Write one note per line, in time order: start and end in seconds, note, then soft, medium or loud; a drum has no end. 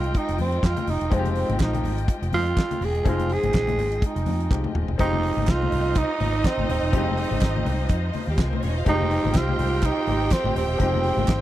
0.00 0.11 C2 medium
0.00 1.07 F3 medium
0.00 1.08 G#3 medium
0.00 4.96 G#3 medium
0.00 1.08 C4 medium
0.00 1.08 D#4 medium
0.00 0.18 F4 medium
0.00 4.95 F4 medium
0.00 1.09 G4 medium
0.00 4.96 D#5 medium
0.00 4.95 G5 medium
0.00 closed hi-hat medium
0.14 0.40 D#4 loud
0.14 kick loud
0.14 closed hi-hat medium
0.14 muted conga soft
0.29 0.37 F1 medium
0.29 closed hi-hat medium
0.29 muted conga soft
0.38 0.59 F2 loud
0.38 0.66 C4 medium
0.38 open hi-hat medium
0.38 high conga medium
0.52 closed hi-hat soft
0.63 0.74 F2 loud
0.63 0.91 F4 loud
0.63 kick loud
0.63 snare loud
0.63 clap medium
0.77 closed hi-hat soft
0.77 muted conga soft
0.77 high conga medium
0.87 0.99 F1 medium
0.87 1.15 D#4 medium
0.87 open hi-hat medium
0.87 low conga medium
1.01 1.10 E1 medium
1.01 closed hi-hat medium
1.10 1.43 F1 loud
1.10 3.01 F3 medium
1.10 3.01 G#3 medium
1.10 3.02 C4 medium
1.10 1.61 C4 loud
1.10 3.02 D#4 medium
1.10 1.19 F4 medium
1.10 kick loud
1.10 closed hi-hat medium
1.10 muted conga soft
1.10 low conga medium
1.19 3.05 G4 medium
1.25 closed hi-hat soft
1.25 high conga medium
1.36 open hi-hat medium
1.49 1.58 G#1 medium
1.49 closed hi-hat medium
1.49 high conga medium
1.59 1.80 A#1 loud
1.59 2.06 D#4 medium
1.59 kick loud
1.59 snare loud
1.59 clap loud
1.59 muted conga soft
1.73 closed hi-hat medium
1.73 muted conga soft
1.73 high conga medium
1.84 2.04 G#1 loud
1.84 open hi-hat medium
1.84 low conga medium
1.98 closed hi-hat medium
2.08 kick loud
2.08 closed hi-hat medium
2.22 2.31 F1 loud
2.22 closed hi-hat medium
2.22 muted conga soft
2.32 2.52 F2 loud
2.32 2.86 F4 loud
2.32 open hi-hat medium
2.32 high conga medium
2.47 closed hi-hat soft
2.57 kick loud
2.57 snare loud
2.57 clap medium
2.71 closed hi-hat medium
2.71 high conga medium
2.81 3.01 E1 medium
2.81 3.10 G#4 loud
2.81 open hi-hat medium
2.81 low conga medium
2.95 closed hi-hat soft
3.04 3.37 F1 loud
3.04 4.47 F3 medium
3.04 4.48 G#3 medium
3.04 4.48 C4 medium
3.04 4.48 D#4 medium
3.04 4.49 G#4 medium
3.04 kick loud
3.04 closed hi-hat medium
3.04 muted conga soft
3.04 low conga medium
3.09 3.34 F4 loud
3.19 closed hi-hat soft
3.19 high conga medium
3.30 4.04 G#4 loud
3.30 open hi-hat medium
3.43 3.52 G#1 medium
3.43 closed hi-hat medium
3.43 high conga medium
3.54 3.78 A#1 medium
3.54 kick loud
3.54 snare loud
3.54 clap loud
3.54 muted conga soft
3.67 closed hi-hat soft
3.67 muted conga soft
3.67 high conga medium
3.78 3.98 G#1 loud
3.78 open hi-hat medium
3.78 low conga medium
3.92 closed hi-hat medium
4.02 4.73 D#4 medium
4.02 kick loud
4.02 closed hi-hat medium
4.16 4.25 F1 medium
4.16 closed hi-hat soft
4.26 4.46 F2 loud
4.26 open hi-hat medium
4.26 high conga medium
4.40 closed hi-hat soft
4.50 4.62 C2 medium
4.50 4.96 F3 medium
4.50 4.97 G#3 soft
4.50 4.98 C4 soft
4.50 4.98 D#4 soft
4.50 5.00 G4 medium
4.50 kick loud
4.50 clap medium
4.50 high tom medium
4.64 mid tom medium
4.64 muted conga soft
4.64 high conga medium
4.75 4.86 D#1 medium
4.75 mid tom medium
4.75 low conga medium
4.88 4.97 E1 medium
4.88 floor tom medium
4.98 5.30 F1 medium
4.98 6.88 F3 medium
4.98 6.89 G#3 medium
4.98 6.89 C4 medium
4.98 8.22 D#4 loud
4.98 5.51 D#4 loud
4.98 6.89 D#4 medium
4.98 11.41 F4 medium
4.98 6.90 G4 medium
4.98 11.41 C5 medium
4.98 11.41 D#5 medium
4.98 8.22 D#5 loud
4.98 kick loud
4.98 closed hi-hat medium
4.98 muted conga soft
4.98 low conga medium
5.13 muted conga soft
5.13 high conga medium
5.23 open hi-hat medium
5.37 5.45 G#1 medium
5.37 high conga loud
5.47 5.68 C2 medium
5.47 5.99 F4 loud
5.47 kick loud
5.47 snare loud
5.47 clap loud
5.47 closed hi-hat medium
5.47 muted conga soft
5.62 muted conga soft
5.62 high conga medium
5.72 6.03 C2 medium
5.72 open hi-hat medium
5.72 low conga medium
5.96 6.48 D#4 loud
5.96 kick loud
5.96 clap medium
5.96 closed hi-hat medium
5.96 muted conga soft
6.20 6.40 G#1 loud
6.20 open hi-hat medium
6.20 high conga medium
6.44 6.70 C4 medium
6.44 kick loud
6.44 snare loud
6.44 clap medium
6.44 closed hi-hat medium
6.44 muted conga soft
6.57 6.66 G#1 medium
6.57 muted conga soft
6.57 high conga loud
6.69 6.80 D#1 medium
6.69 8.11 C4 medium
6.69 open hi-hat medium
6.69 low conga medium
6.83 6.93 E1 medium
6.91 7.24 F1 loud
6.91 8.82 F3 medium
6.91 6.99 G3 medium
6.91 8.82 C4 medium
6.91 8.83 D#4 medium
6.91 8.83 G4 medium
6.91 kick loud
6.91 closed hi-hat medium
6.91 muted conga soft
6.91 low conga medium
6.98 8.84 G#3 medium
7.07 high conga medium
7.17 open hi-hat medium
7.31 7.40 G#1 loud
7.31 high conga loud
7.41 7.61 G#1 loud
7.41 kick loud
7.41 snare loud
7.41 clap medium
7.41 closed hi-hat medium
7.41 muted conga soft
7.56 muted conga soft
7.56 high conga medium
7.65 7.85 C2 loud
7.65 open hi-hat medium
7.65 low conga medium
7.89 8.09 F2 loud
7.89 kick loud
7.89 clap medium
7.89 closed hi-hat medium
8.13 open hi-hat medium
8.13 high conga medium
8.27 8.36 D#2 loud
8.27 8.38 G3 medium
8.27 8.38 G4 medium
8.38 8.58 C2 medium
8.38 8.46 G#3 medium
8.38 8.46 G#4 medium
8.38 kick loud
8.38 snare loud
8.38 clap medium
8.38 closed hi-hat medium
8.38 muted conga soft
8.46 8.54 A#3 medium
8.46 8.54 A#4 medium
8.53 8.62 C4 medium
8.53 8.62 C5 medium
8.53 high conga loud
8.62 8.82 E1 medium
8.62 8.70 C#4 medium
8.62 8.70 C#5 medium
8.62 open hi-hat medium
8.62 low conga medium
8.70 8.78 D#4 medium
8.70 8.78 D#5 loud
8.78 8.86 F4 medium
8.78 8.86 F5 medium
8.85 9.17 F1 loud
8.85 10.75 F3 medium
8.85 10.76 G#3 medium
8.85 10.76 C4 medium
8.85 10.76 D#4 medium
8.85 9.38 D#4 loud
8.85 11.41 G4 loud
8.85 10.77 G4 medium
8.85 11.41 G5 loud
8.85 kick loud
8.85 closed hi-hat medium
8.85 low conga medium
9.01 muted conga soft
9.01 high conga medium
9.10 open hi-hat medium
9.24 9.33 G#1 medium
9.24 high conga loud
9.34 9.55 C2 loud
9.34 9.87 F4 loud
9.34 kick loud
9.34 snare loud
9.34 clap loud
9.34 closed hi-hat medium
9.34 muted conga soft
9.49 high conga medium
9.59 9.90 C2 loud
9.59 open hi-hat medium
9.59 low conga medium
9.83 10.34 D#4 loud
9.83 kick loud
9.83 clap medium
9.83 closed hi-hat medium
9.83 muted conga soft
9.97 muted conga soft
10.07 10.27 G#1 loud
10.07 open hi-hat medium
10.07 high conga medium
10.31 10.56 C4 loud
10.31 kick loud
10.31 snare loud
10.31 clap medium
10.31 closed hi-hat medium
10.31 muted conga soft
10.44 10.53 G#1 medium
10.44 muted conga soft
10.44 high conga medium
10.55 10.66 D#1 loud
10.55 11.41 C4 loud
10.55 open hi-hat medium
10.55 low conga medium
10.68 10.77 E1 loud
10.77 11.11 F1 loud
10.77 11.41 F3 medium
10.77 11.41 G#3 medium
10.77 11.41 C4 medium
10.77 11.41 D#4 medium
10.77 11.41 G4 medium
10.77 kick loud
10.77 closed hi-hat medium
10.77 muted conga soft
10.77 low conga medium
10.94 high conga medium
11.04 open hi-hat medium
11.17 11.26 G#1 loud
11.17 high conga loud
11.28 11.41 G#1 medium
11.28 kick loud
11.28 snare loud
11.28 clap loud
11.28 closed hi-hat medium